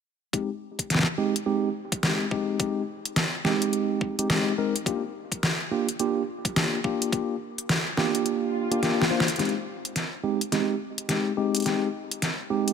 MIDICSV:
0, 0, Header, 1, 4, 480
1, 0, Start_track
1, 0, Tempo, 566038
1, 285, Time_signature, 4, 2, 24, 8
1, 10796, End_track
2, 0, Start_track
2, 0, Title_t, "Tine electric piano"
2, 0, Program_c, 0, 4
2, 281, Note_on_c, 0, 56, 84
2, 282, Note_on_c, 0, 60, 80
2, 282, Note_on_c, 0, 63, 78
2, 282, Note_on_c, 0, 67, 94
2, 413, Note_off_c, 0, 56, 0
2, 413, Note_off_c, 0, 63, 0
2, 413, Note_off_c, 0, 67, 0
2, 414, Note_off_c, 0, 60, 0
2, 999, Note_on_c, 0, 60, 76
2, 999, Note_on_c, 0, 63, 79
2, 1000, Note_on_c, 0, 56, 87
2, 1000, Note_on_c, 0, 67, 94
2, 1132, Note_off_c, 0, 60, 0
2, 1132, Note_off_c, 0, 63, 0
2, 1133, Note_off_c, 0, 56, 0
2, 1133, Note_off_c, 0, 67, 0
2, 1240, Note_on_c, 0, 67, 98
2, 1241, Note_on_c, 0, 63, 82
2, 1242, Note_on_c, 0, 56, 89
2, 1242, Note_on_c, 0, 60, 83
2, 1428, Note_off_c, 0, 63, 0
2, 1428, Note_off_c, 0, 67, 0
2, 1429, Note_off_c, 0, 56, 0
2, 1429, Note_off_c, 0, 60, 0
2, 1720, Note_on_c, 0, 60, 76
2, 1720, Note_on_c, 0, 63, 73
2, 1721, Note_on_c, 0, 56, 84
2, 1721, Note_on_c, 0, 67, 92
2, 1908, Note_off_c, 0, 60, 0
2, 1908, Note_off_c, 0, 63, 0
2, 1909, Note_off_c, 0, 56, 0
2, 1909, Note_off_c, 0, 67, 0
2, 1961, Note_on_c, 0, 56, 94
2, 1961, Note_on_c, 0, 60, 86
2, 1961, Note_on_c, 0, 63, 83
2, 1961, Note_on_c, 0, 67, 102
2, 2180, Note_off_c, 0, 67, 0
2, 2181, Note_off_c, 0, 56, 0
2, 2181, Note_off_c, 0, 60, 0
2, 2181, Note_off_c, 0, 63, 0
2, 2202, Note_on_c, 0, 60, 64
2, 2202, Note_on_c, 0, 67, 79
2, 2203, Note_on_c, 0, 56, 74
2, 2203, Note_on_c, 0, 63, 67
2, 2389, Note_off_c, 0, 60, 0
2, 2389, Note_off_c, 0, 67, 0
2, 2390, Note_off_c, 0, 56, 0
2, 2390, Note_off_c, 0, 63, 0
2, 2922, Note_on_c, 0, 63, 86
2, 2923, Note_on_c, 0, 56, 95
2, 2924, Note_on_c, 0, 60, 85
2, 2924, Note_on_c, 0, 67, 105
2, 3515, Note_off_c, 0, 56, 0
2, 3515, Note_off_c, 0, 63, 0
2, 3516, Note_off_c, 0, 60, 0
2, 3516, Note_off_c, 0, 67, 0
2, 3549, Note_on_c, 0, 56, 89
2, 3550, Note_on_c, 0, 60, 81
2, 3550, Note_on_c, 0, 63, 84
2, 3550, Note_on_c, 0, 67, 97
2, 3621, Note_off_c, 0, 56, 0
2, 3622, Note_off_c, 0, 60, 0
2, 3622, Note_off_c, 0, 63, 0
2, 3622, Note_off_c, 0, 67, 0
2, 3646, Note_on_c, 0, 60, 82
2, 3646, Note_on_c, 0, 63, 81
2, 3647, Note_on_c, 0, 56, 89
2, 3647, Note_on_c, 0, 67, 101
2, 3831, Note_off_c, 0, 60, 0
2, 3831, Note_off_c, 0, 63, 0
2, 3832, Note_off_c, 0, 56, 0
2, 3832, Note_off_c, 0, 67, 0
2, 3884, Note_on_c, 0, 60, 83
2, 3885, Note_on_c, 0, 56, 83
2, 3885, Note_on_c, 0, 70, 97
2, 3886, Note_on_c, 0, 63, 78
2, 4014, Note_off_c, 0, 60, 0
2, 4015, Note_off_c, 0, 56, 0
2, 4015, Note_off_c, 0, 63, 0
2, 4015, Note_off_c, 0, 70, 0
2, 4123, Note_on_c, 0, 58, 89
2, 4123, Note_on_c, 0, 62, 82
2, 4123, Note_on_c, 0, 65, 81
2, 4123, Note_on_c, 0, 67, 99
2, 4254, Note_off_c, 0, 58, 0
2, 4254, Note_off_c, 0, 62, 0
2, 4254, Note_off_c, 0, 65, 0
2, 4254, Note_off_c, 0, 67, 0
2, 4845, Note_on_c, 0, 58, 88
2, 4845, Note_on_c, 0, 62, 80
2, 4846, Note_on_c, 0, 67, 96
2, 4847, Note_on_c, 0, 65, 83
2, 4975, Note_off_c, 0, 58, 0
2, 4975, Note_off_c, 0, 62, 0
2, 4975, Note_off_c, 0, 67, 0
2, 4976, Note_off_c, 0, 65, 0
2, 5087, Note_on_c, 0, 58, 92
2, 5087, Note_on_c, 0, 65, 85
2, 5087, Note_on_c, 0, 67, 103
2, 5088, Note_on_c, 0, 62, 87
2, 5271, Note_off_c, 0, 58, 0
2, 5272, Note_off_c, 0, 62, 0
2, 5272, Note_off_c, 0, 65, 0
2, 5272, Note_off_c, 0, 67, 0
2, 5565, Note_on_c, 0, 58, 85
2, 5565, Note_on_c, 0, 62, 78
2, 5565, Note_on_c, 0, 65, 77
2, 5566, Note_on_c, 0, 67, 94
2, 5751, Note_off_c, 0, 58, 0
2, 5751, Note_off_c, 0, 62, 0
2, 5751, Note_off_c, 0, 65, 0
2, 5751, Note_off_c, 0, 67, 0
2, 5804, Note_on_c, 0, 58, 97
2, 5804, Note_on_c, 0, 62, 90
2, 5804, Note_on_c, 0, 65, 88
2, 5805, Note_on_c, 0, 67, 103
2, 6022, Note_off_c, 0, 58, 0
2, 6022, Note_off_c, 0, 62, 0
2, 6022, Note_off_c, 0, 65, 0
2, 6023, Note_off_c, 0, 67, 0
2, 6048, Note_on_c, 0, 58, 76
2, 6048, Note_on_c, 0, 65, 66
2, 6049, Note_on_c, 0, 62, 71
2, 6049, Note_on_c, 0, 67, 84
2, 6232, Note_off_c, 0, 58, 0
2, 6232, Note_off_c, 0, 65, 0
2, 6233, Note_off_c, 0, 62, 0
2, 6233, Note_off_c, 0, 67, 0
2, 6762, Note_on_c, 0, 65, 86
2, 6763, Note_on_c, 0, 58, 96
2, 6763, Note_on_c, 0, 62, 89
2, 6763, Note_on_c, 0, 67, 108
2, 7355, Note_off_c, 0, 58, 0
2, 7355, Note_off_c, 0, 65, 0
2, 7356, Note_off_c, 0, 62, 0
2, 7356, Note_off_c, 0, 67, 0
2, 7389, Note_on_c, 0, 58, 89
2, 7389, Note_on_c, 0, 62, 85
2, 7389, Note_on_c, 0, 65, 83
2, 7389, Note_on_c, 0, 67, 97
2, 7461, Note_off_c, 0, 58, 0
2, 7461, Note_off_c, 0, 62, 0
2, 7461, Note_off_c, 0, 67, 0
2, 7462, Note_off_c, 0, 65, 0
2, 7482, Note_on_c, 0, 58, 95
2, 7482, Note_on_c, 0, 65, 80
2, 7483, Note_on_c, 0, 62, 83
2, 7483, Note_on_c, 0, 67, 100
2, 7669, Note_off_c, 0, 58, 0
2, 7669, Note_off_c, 0, 65, 0
2, 7670, Note_off_c, 0, 62, 0
2, 7670, Note_off_c, 0, 67, 0
2, 7721, Note_on_c, 0, 62, 84
2, 7722, Note_on_c, 0, 58, 88
2, 7722, Note_on_c, 0, 65, 80
2, 7722, Note_on_c, 0, 72, 97
2, 7853, Note_off_c, 0, 58, 0
2, 7853, Note_off_c, 0, 62, 0
2, 7853, Note_off_c, 0, 65, 0
2, 7853, Note_off_c, 0, 72, 0
2, 7957, Note_on_c, 0, 63, 85
2, 7958, Note_on_c, 0, 56, 92
2, 7958, Note_on_c, 0, 60, 85
2, 7958, Note_on_c, 0, 67, 95
2, 8091, Note_off_c, 0, 60, 0
2, 8091, Note_off_c, 0, 63, 0
2, 8092, Note_off_c, 0, 56, 0
2, 8092, Note_off_c, 0, 67, 0
2, 8680, Note_on_c, 0, 60, 85
2, 8680, Note_on_c, 0, 63, 80
2, 8681, Note_on_c, 0, 56, 88
2, 8681, Note_on_c, 0, 67, 93
2, 8812, Note_off_c, 0, 60, 0
2, 8813, Note_off_c, 0, 56, 0
2, 8813, Note_off_c, 0, 63, 0
2, 8813, Note_off_c, 0, 67, 0
2, 8922, Note_on_c, 0, 56, 93
2, 8922, Note_on_c, 0, 60, 81
2, 8922, Note_on_c, 0, 63, 85
2, 8923, Note_on_c, 0, 67, 97
2, 9109, Note_off_c, 0, 56, 0
2, 9109, Note_off_c, 0, 60, 0
2, 9109, Note_off_c, 0, 63, 0
2, 9110, Note_off_c, 0, 67, 0
2, 9401, Note_on_c, 0, 56, 86
2, 9402, Note_on_c, 0, 60, 77
2, 9402, Note_on_c, 0, 63, 76
2, 9402, Note_on_c, 0, 67, 97
2, 9589, Note_off_c, 0, 56, 0
2, 9589, Note_off_c, 0, 60, 0
2, 9589, Note_off_c, 0, 63, 0
2, 9589, Note_off_c, 0, 67, 0
2, 9642, Note_on_c, 0, 60, 87
2, 9642, Note_on_c, 0, 67, 102
2, 9643, Note_on_c, 0, 56, 97
2, 9643, Note_on_c, 0, 63, 84
2, 9861, Note_off_c, 0, 60, 0
2, 9861, Note_off_c, 0, 63, 0
2, 9861, Note_off_c, 0, 67, 0
2, 9862, Note_off_c, 0, 56, 0
2, 9883, Note_on_c, 0, 60, 72
2, 9883, Note_on_c, 0, 63, 67
2, 9884, Note_on_c, 0, 56, 73
2, 9884, Note_on_c, 0, 67, 84
2, 10070, Note_off_c, 0, 56, 0
2, 10070, Note_off_c, 0, 60, 0
2, 10070, Note_off_c, 0, 63, 0
2, 10070, Note_off_c, 0, 67, 0
2, 10601, Note_on_c, 0, 60, 89
2, 10601, Note_on_c, 0, 63, 88
2, 10601, Note_on_c, 0, 67, 107
2, 10602, Note_on_c, 0, 56, 92
2, 10796, Note_off_c, 0, 56, 0
2, 10796, Note_off_c, 0, 60, 0
2, 10796, Note_off_c, 0, 63, 0
2, 10796, Note_off_c, 0, 67, 0
2, 10796, End_track
3, 0, Start_track
3, 0, Title_t, "Swell"
3, 0, Program_c, 1, 103
3, 7004, Note_on_c, 1, 60, 77
3, 7965, Note_off_c, 1, 60, 0
3, 10796, End_track
4, 0, Start_track
4, 0, Title_t, "Drums"
4, 282, Note_on_c, 9, 36, 114
4, 286, Note_on_c, 9, 42, 53
4, 367, Note_off_c, 9, 36, 0
4, 370, Note_off_c, 9, 42, 0
4, 669, Note_on_c, 9, 36, 61
4, 671, Note_on_c, 9, 42, 65
4, 753, Note_off_c, 9, 36, 0
4, 756, Note_off_c, 9, 42, 0
4, 765, Note_on_c, 9, 38, 52
4, 765, Note_on_c, 9, 42, 52
4, 802, Note_off_c, 9, 38, 0
4, 802, Note_on_c, 9, 38, 68
4, 839, Note_off_c, 9, 38, 0
4, 839, Note_on_c, 9, 38, 80
4, 850, Note_off_c, 9, 42, 0
4, 875, Note_off_c, 9, 38, 0
4, 875, Note_on_c, 9, 38, 90
4, 959, Note_off_c, 9, 38, 0
4, 1152, Note_on_c, 9, 42, 64
4, 1237, Note_off_c, 9, 42, 0
4, 1628, Note_on_c, 9, 36, 101
4, 1629, Note_on_c, 9, 42, 69
4, 1713, Note_off_c, 9, 36, 0
4, 1714, Note_off_c, 9, 42, 0
4, 1722, Note_on_c, 9, 38, 118
4, 1722, Note_on_c, 9, 42, 52
4, 1807, Note_off_c, 9, 38, 0
4, 1807, Note_off_c, 9, 42, 0
4, 1962, Note_on_c, 9, 36, 99
4, 2046, Note_off_c, 9, 36, 0
4, 2201, Note_on_c, 9, 36, 122
4, 2201, Note_on_c, 9, 42, 55
4, 2286, Note_off_c, 9, 36, 0
4, 2286, Note_off_c, 9, 42, 0
4, 2590, Note_on_c, 9, 42, 65
4, 2675, Note_off_c, 9, 42, 0
4, 2682, Note_on_c, 9, 38, 119
4, 2682, Note_on_c, 9, 42, 53
4, 2767, Note_off_c, 9, 38, 0
4, 2767, Note_off_c, 9, 42, 0
4, 2924, Note_on_c, 9, 38, 64
4, 3009, Note_off_c, 9, 38, 0
4, 3068, Note_on_c, 9, 42, 66
4, 3153, Note_off_c, 9, 42, 0
4, 3163, Note_on_c, 9, 42, 53
4, 3247, Note_off_c, 9, 42, 0
4, 3402, Note_on_c, 9, 36, 98
4, 3486, Note_off_c, 9, 36, 0
4, 3552, Note_on_c, 9, 42, 67
4, 3636, Note_off_c, 9, 42, 0
4, 3644, Note_on_c, 9, 38, 125
4, 3644, Note_on_c, 9, 42, 54
4, 3729, Note_off_c, 9, 38, 0
4, 3729, Note_off_c, 9, 42, 0
4, 4033, Note_on_c, 9, 42, 66
4, 4118, Note_off_c, 9, 42, 0
4, 4122, Note_on_c, 9, 36, 122
4, 4127, Note_on_c, 9, 42, 51
4, 4207, Note_off_c, 9, 36, 0
4, 4212, Note_off_c, 9, 42, 0
4, 4508, Note_on_c, 9, 36, 64
4, 4512, Note_on_c, 9, 42, 67
4, 4593, Note_off_c, 9, 36, 0
4, 4596, Note_off_c, 9, 42, 0
4, 4605, Note_on_c, 9, 38, 124
4, 4605, Note_on_c, 9, 42, 52
4, 4690, Note_off_c, 9, 38, 0
4, 4690, Note_off_c, 9, 42, 0
4, 4991, Note_on_c, 9, 42, 65
4, 5075, Note_off_c, 9, 42, 0
4, 5083, Note_on_c, 9, 42, 53
4, 5168, Note_off_c, 9, 42, 0
4, 5469, Note_on_c, 9, 36, 106
4, 5471, Note_on_c, 9, 42, 66
4, 5554, Note_off_c, 9, 36, 0
4, 5556, Note_off_c, 9, 42, 0
4, 5566, Note_on_c, 9, 38, 127
4, 5566, Note_on_c, 9, 42, 53
4, 5650, Note_off_c, 9, 38, 0
4, 5650, Note_off_c, 9, 42, 0
4, 5803, Note_on_c, 9, 36, 111
4, 5887, Note_off_c, 9, 36, 0
4, 5951, Note_on_c, 9, 42, 63
4, 6036, Note_off_c, 9, 42, 0
4, 6042, Note_on_c, 9, 36, 118
4, 6044, Note_on_c, 9, 42, 51
4, 6127, Note_off_c, 9, 36, 0
4, 6128, Note_off_c, 9, 42, 0
4, 6430, Note_on_c, 9, 42, 64
4, 6515, Note_off_c, 9, 42, 0
4, 6524, Note_on_c, 9, 38, 126
4, 6524, Note_on_c, 9, 42, 52
4, 6609, Note_off_c, 9, 38, 0
4, 6609, Note_off_c, 9, 42, 0
4, 6762, Note_on_c, 9, 38, 66
4, 6847, Note_off_c, 9, 38, 0
4, 6909, Note_on_c, 9, 42, 63
4, 6993, Note_off_c, 9, 42, 0
4, 7002, Note_on_c, 9, 42, 52
4, 7086, Note_off_c, 9, 42, 0
4, 7391, Note_on_c, 9, 42, 63
4, 7475, Note_off_c, 9, 42, 0
4, 7485, Note_on_c, 9, 38, 65
4, 7485, Note_on_c, 9, 42, 52
4, 7570, Note_off_c, 9, 38, 0
4, 7570, Note_off_c, 9, 42, 0
4, 7645, Note_on_c, 9, 38, 83
4, 7730, Note_off_c, 9, 38, 0
4, 7804, Note_on_c, 9, 38, 88
4, 7871, Note_on_c, 9, 42, 61
4, 7883, Note_off_c, 9, 42, 0
4, 7883, Note_on_c, 9, 42, 46
4, 7888, Note_off_c, 9, 38, 0
4, 7937, Note_off_c, 9, 42, 0
4, 7937, Note_on_c, 9, 42, 39
4, 7966, Note_off_c, 9, 42, 0
4, 7966, Note_on_c, 9, 38, 49
4, 7966, Note_on_c, 9, 42, 55
4, 8015, Note_off_c, 9, 42, 0
4, 8015, Note_on_c, 9, 42, 28
4, 8047, Note_off_c, 9, 42, 0
4, 8047, Note_on_c, 9, 42, 22
4, 8050, Note_off_c, 9, 38, 0
4, 8132, Note_off_c, 9, 42, 0
4, 8353, Note_on_c, 9, 42, 66
4, 8438, Note_off_c, 9, 42, 0
4, 8445, Note_on_c, 9, 38, 52
4, 8445, Note_on_c, 9, 42, 55
4, 8529, Note_off_c, 9, 38, 0
4, 8529, Note_off_c, 9, 42, 0
4, 8830, Note_on_c, 9, 42, 65
4, 8915, Note_off_c, 9, 42, 0
4, 8923, Note_on_c, 9, 38, 48
4, 8923, Note_on_c, 9, 42, 54
4, 9008, Note_off_c, 9, 38, 0
4, 9008, Note_off_c, 9, 42, 0
4, 9311, Note_on_c, 9, 42, 68
4, 9396, Note_off_c, 9, 42, 0
4, 9404, Note_on_c, 9, 38, 55
4, 9404, Note_on_c, 9, 42, 54
4, 9489, Note_off_c, 9, 38, 0
4, 9489, Note_off_c, 9, 42, 0
4, 9791, Note_on_c, 9, 42, 65
4, 9804, Note_off_c, 9, 42, 0
4, 9804, Note_on_c, 9, 42, 40
4, 9808, Note_off_c, 9, 42, 0
4, 9808, Note_on_c, 9, 42, 50
4, 9837, Note_off_c, 9, 42, 0
4, 9837, Note_on_c, 9, 42, 36
4, 9856, Note_off_c, 9, 42, 0
4, 9856, Note_on_c, 9, 42, 28
4, 9872, Note_off_c, 9, 42, 0
4, 9872, Note_on_c, 9, 42, 23
4, 9887, Note_off_c, 9, 42, 0
4, 9887, Note_on_c, 9, 38, 52
4, 9887, Note_on_c, 9, 42, 55
4, 9971, Note_off_c, 9, 38, 0
4, 9971, Note_off_c, 9, 42, 0
4, 10273, Note_on_c, 9, 42, 69
4, 10358, Note_off_c, 9, 42, 0
4, 10364, Note_on_c, 9, 38, 57
4, 10364, Note_on_c, 9, 42, 57
4, 10449, Note_off_c, 9, 38, 0
4, 10449, Note_off_c, 9, 42, 0
4, 10750, Note_on_c, 9, 42, 64
4, 10796, Note_off_c, 9, 42, 0
4, 10796, End_track
0, 0, End_of_file